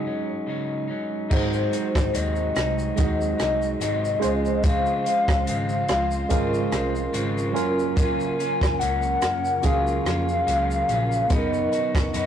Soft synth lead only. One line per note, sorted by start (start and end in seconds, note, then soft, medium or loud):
0.00 0.45 C#5 loud
1.33 2.17 C5 medium
2.16 2.98 D#5 medium
2.99 4.66 D#5 loud
4.64 7.14 F5 loud
7.97 8.80 G#5 loud
8.79 9.65 F#5 loud
9.64 11.34 F5 loud
11.32 12.15 D#5 loud
12.15 12.26 D#5 medium